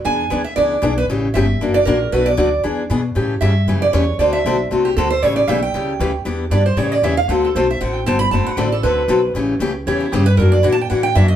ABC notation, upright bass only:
X:1
M:4/4
L:1/8
Q:"Swing" 1/4=232
K:Amix
V:1 name="Upright bass" clef=bass
E,,2 D,,2 C,,2 B,,,2 | A,,,2 G,,,2 F,,,2 ^A,,,2 | B,,,2 D,,2 E,,2 B,,2 | A,,2 G,,2 F,,2 E,,2 |
D,,2 B,,,2 =C,,2 D,,2 | A,,,2 B,,,2 C,,2 D,,2 | E,,2 G,,2 A,,2 E,,2 | D,,2 B,,,2 A,,,2 G,,,2 |
F,,, z A,,,2 D,,2 B,,,2 | A,,,2 C,,2 E,,2 G,,2 | F,,2 ^A,,2 =A,,2 F,,2 |]